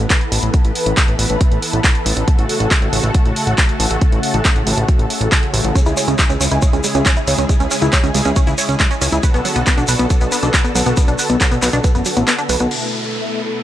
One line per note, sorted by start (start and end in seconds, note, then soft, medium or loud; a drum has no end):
0.00 2.24 E3 medium
0.00 2.24 B3 medium
0.00 5.71 A4 medium
0.00 2.24 B4 medium
0.10 kick loud
0.10 clap loud
0.10 closed hi-hat medium
0.21 closed hi-hat soft
0.32 0.39 A1 loud
0.32 open hi-hat loud
0.43 0.50 A1 medium
0.43 closed hi-hat medium
0.54 kick loud
0.54 closed hi-hat medium
0.64 0.71 A1 medium
0.64 closed hi-hat soft
0.75 open hi-hat loud
0.86 0.93 A1 medium
0.86 closed hi-hat medium
0.97 kick loud
0.97 clap loud
0.97 closed hi-hat medium
1.08 1.15 A1 medium
1.08 closed hi-hat soft
1.19 1.26 A1 medium
1.19 open hi-hat loud
1.30 1.37 A1 medium
1.30 closed hi-hat medium
1.41 kick loud
1.41 closed hi-hat medium
1.52 1.58 A1 medium
1.52 closed hi-hat soft
1.62 open hi-hat loud
1.73 1.80 A1 medium
1.73 closed hi-hat medium
1.84 kick loud
1.84 clap loud
1.84 closed hi-hat medium
1.95 closed hi-hat soft
2.06 2.13 A1 medium
2.06 open hi-hat loud
2.17 2.24 A1 medium
2.17 closed hi-hat medium
2.28 9.19 C#3 medium
2.28 5.72 A3 medium
2.28 5.72 F#4 medium
2.28 kick loud
2.28 closed hi-hat medium
2.38 2.45 A1 medium
2.38 closed hi-hat soft
2.49 open hi-hat loud
2.60 2.67 A1 medium
2.60 closed hi-hat soft
2.71 kick loud
2.71 clap loud
2.71 closed hi-hat medium
2.82 2.89 A1 medium
2.82 closed hi-hat soft
2.93 3.00 A1 medium
2.93 open hi-hat loud
3.04 3.10 A1 medium
3.04 closed hi-hat medium
3.14 kick loud
3.14 closed hi-hat medium
3.25 3.32 A1 medium
3.25 closed hi-hat soft
3.36 open hi-hat loud
3.47 3.54 A1 medium
3.47 closed hi-hat medium
3.58 kick loud
3.58 clap loud
3.58 closed hi-hat medium
3.69 closed hi-hat soft
3.80 3.87 A1 medium
3.80 open hi-hat loud
3.90 3.97 A1 medium
3.90 closed hi-hat medium
4.01 kick loud
4.01 closed hi-hat medium
4.12 4.19 A1 medium
4.12 closed hi-hat soft
4.23 open hi-hat loud
4.34 4.41 A1 medium
4.34 closed hi-hat soft
4.45 kick loud
4.45 clap loud
4.45 closed hi-hat medium
4.56 4.63 A1 medium
4.56 closed hi-hat soft
4.67 4.74 A1 medium
4.67 open hi-hat loud
4.77 4.84 A1 medium
4.77 closed hi-hat medium
4.88 kick loud
4.88 closed hi-hat medium
4.99 5.06 A1 medium
4.99 closed hi-hat soft
5.10 open hi-hat loud
5.21 5.28 A1 medium
5.21 closed hi-hat soft
5.32 kick loud
5.32 clap loud
5.32 closed hi-hat medium
5.43 closed hi-hat soft
5.54 5.61 A1 medium
5.54 open hi-hat loud
5.64 5.71 A1 medium
5.64 closed hi-hat soft
5.75 9.20 G#3 medium
5.75 5.80 C#4 loud
5.75 9.20 E4 medium
5.75 9.20 G#4 medium
5.75 kick loud
5.75 closed hi-hat medium
5.75 shekere medium
5.86 5.93 C#2 medium
5.86 5.90 E4 loud
5.86 closed hi-hat soft
5.86 shekere soft
5.97 6.03 C#5 medium
5.97 open hi-hat loud
5.97 shekere medium
6.08 6.15 C#2 medium
6.08 6.14 C#4 loud
6.08 closed hi-hat soft
6.08 shekere soft
6.18 6.21 G#3 medium
6.18 kick loud
6.18 clap loud
6.18 closed hi-hat medium
6.18 shekere soft
6.30 6.37 C#2 medium
6.30 6.34 C#4 loud
6.30 closed hi-hat soft
6.30 shekere soft
6.41 6.47 C#2 medium
6.41 6.45 C#4 loud
6.41 open hi-hat loud
6.41 shekere loud
6.51 6.58 C#2 medium
6.51 6.56 E4 loud
6.51 closed hi-hat medium
6.51 shekere soft
6.62 6.69 C#5 medium
6.62 kick loud
6.62 closed hi-hat medium
6.62 shekere medium
6.73 6.80 C#2 medium
6.73 6.80 C#4 loud
6.73 closed hi-hat soft
6.73 shekere soft
6.84 6.87 G#3 medium
6.84 open hi-hat loud
6.84 shekere medium
6.95 7.02 C#2 medium
6.95 6.99 C#4 loud
6.95 closed hi-hat medium
6.95 shekere soft
7.06 7.10 C#4 loud
7.06 kick loud
7.06 clap loud
7.06 closed hi-hat medium
7.06 shekere medium
7.17 7.21 E4 loud
7.17 closed hi-hat soft
7.17 shekere soft
7.27 7.34 C#2 medium
7.27 7.34 C#5 medium
7.27 open hi-hat loud
7.27 shekere medium
7.38 7.45 C#2 medium
7.38 7.45 C#4 loud
7.38 closed hi-hat medium
7.38 shekere soft
7.49 7.52 G#3 medium
7.49 kick loud
7.49 closed hi-hat medium
7.49 shekere soft
7.60 7.67 C#2 medium
7.60 7.64 C#4 loud
7.60 closed hi-hat soft
7.60 shekere soft
7.71 7.75 C#4 loud
7.71 open hi-hat loud
7.71 shekere medium
7.82 7.89 C#2 medium
7.82 7.86 E4 loud
7.82 closed hi-hat medium
7.82 shekere soft
7.93 7.99 C#5 medium
7.93 kick loud
7.93 clap loud
7.93 closed hi-hat medium
7.93 shekere medium
8.04 8.11 C#2 medium
8.04 8.10 C#4 loud
8.04 closed hi-hat soft
8.04 shekere soft
8.14 8.21 C#2 medium
8.14 8.17 G#3 medium
8.14 open hi-hat loud
8.14 shekere medium
8.25 8.32 C#2 medium
8.25 8.30 C#4 loud
8.25 closed hi-hat medium
8.25 shekere soft
8.36 8.41 C#4 loud
8.36 kick loud
8.36 closed hi-hat medium
8.36 shekere soft
8.47 8.54 C#2 medium
8.47 8.51 E4 loud
8.47 closed hi-hat soft
8.47 shekere soft
8.58 8.64 C#5 medium
8.58 open hi-hat loud
8.58 shekere medium
8.69 8.76 C#2 medium
8.69 8.75 C#4 loud
8.69 closed hi-hat medium
8.69 shekere soft
8.80 8.82 G#3 medium
8.80 kick loud
8.80 clap loud
8.80 closed hi-hat medium
8.80 shekere medium
8.91 8.95 C#4 loud
8.91 closed hi-hat soft
8.91 shekere soft
9.01 9.08 C#2 loud
9.01 9.06 C#4 loud
9.01 open hi-hat loud
9.01 shekere medium
9.12 9.19 C#2 medium
9.12 9.17 E4 loud
9.12 closed hi-hat medium
9.12 shekere soft
9.23 12.68 D3 medium
9.23 12.68 B3 medium
9.23 12.68 F#4 medium
9.23 12.68 A4 medium
9.23 9.30 B4 medium
9.23 kick loud
9.23 closed hi-hat medium
9.23 shekere medium
9.34 9.41 B1 medium
9.34 9.40 B3 loud
9.34 closed hi-hat soft
9.34 shekere soft
9.45 9.48 F#3 medium
9.45 open hi-hat loud
9.45 shekere medium
9.55 9.63 B1 medium
9.55 9.60 B3 loud
9.55 closed hi-hat medium
9.55 shekere soft
9.67 9.71 B3 loud
9.67 kick loud
9.67 clap loud
9.67 closed hi-hat medium
9.67 shekere soft
9.78 9.85 B1 medium
9.78 9.82 D4 loud
9.78 closed hi-hat soft
9.78 shekere soft
9.88 9.95 B1 loud
9.88 9.95 B4 medium
9.88 open hi-hat loud
9.88 shekere medium
9.99 10.06 B1 medium
9.99 10.06 B3 loud
9.99 closed hi-hat medium
9.99 shekere soft
10.10 10.13 F#3 medium
10.10 kick loud
10.10 closed hi-hat medium
10.10 shekere medium
10.21 10.28 B1 medium
10.21 10.25 B3 loud
10.21 closed hi-hat soft
10.21 shekere soft
10.32 10.36 B3 loud
10.32 open hi-hat loud
10.32 shekere medium
10.43 10.50 B1 medium
10.43 10.47 D4 loud
10.43 closed hi-hat medium
10.43 shekere soft
10.54 10.60 B4 medium
10.54 kick loud
10.54 clap loud
10.54 closed hi-hat medium
10.54 shekere medium
10.64 10.71 B3 loud
10.64 closed hi-hat soft
10.64 shekere soft
10.75 10.82 B1 medium
10.75 10.78 F#3 medium
10.75 open hi-hat loud
10.75 shekere medium
10.86 10.93 B1 medium
10.86 10.90 B3 loud
10.86 closed hi-hat medium
10.86 shekere soft
10.97 11.01 B3 loud
10.97 kick loud
10.97 closed hi-hat medium
10.97 shekere medium
11.08 11.15 B1 medium
11.08 11.12 D4 loud
11.08 closed hi-hat soft
11.08 shekere soft
11.19 11.25 B4 medium
11.19 open hi-hat loud
11.19 shekere medium
11.29 11.37 B1 medium
11.29 11.36 B3 loud
11.29 closed hi-hat medium
11.29 shekere soft
11.41 11.43 F#3 medium
11.41 kick loud
11.41 clap loud
11.41 closed hi-hat medium
11.41 shekere medium
11.51 11.58 B1 medium
11.51 11.56 B3 loud
11.51 closed hi-hat soft
11.51 shekere soft
11.62 11.69 B1 medium
11.62 11.67 B3 loud
11.62 clap medium
11.62 open hi-hat loud
11.62 shekere medium
11.73 11.80 B1 medium
11.73 11.77 D4 loud
11.73 closed hi-hat medium
11.73 shekere soft
11.84 11.90 B4 medium
11.84 kick loud
11.84 closed hi-hat medium
11.84 shekere soft
11.95 12.02 F#1 medium
11.95 12.01 B3 loud
11.95 closed hi-hat soft
11.95 shekere soft
12.05 12.08 F#3 medium
12.05 open hi-hat loud
12.05 shekere medium
12.17 12.24 A1 medium
12.17 12.21 B3 loud
12.17 closed hi-hat medium
12.17 shekere soft
12.28 12.32 B3 loud
12.28 clap loud
12.28 closed hi-hat medium
12.28 shekere soft
12.38 12.43 D4 loud
12.38 closed hi-hat soft
12.38 shekere soft
12.49 12.56 B1 medium
12.49 12.56 B4 medium
12.49 open hi-hat loud
12.49 shekere medium
12.60 12.67 B1 medium
12.60 12.67 B3 loud
12.60 closed hi-hat medium
12.60 shekere soft
12.71 13.63 B2 medium
12.71 13.63 A3 medium
12.71 13.63 E4 medium
12.71 13.63 A4 medium
12.71 crash medium
12.71 downlifter medium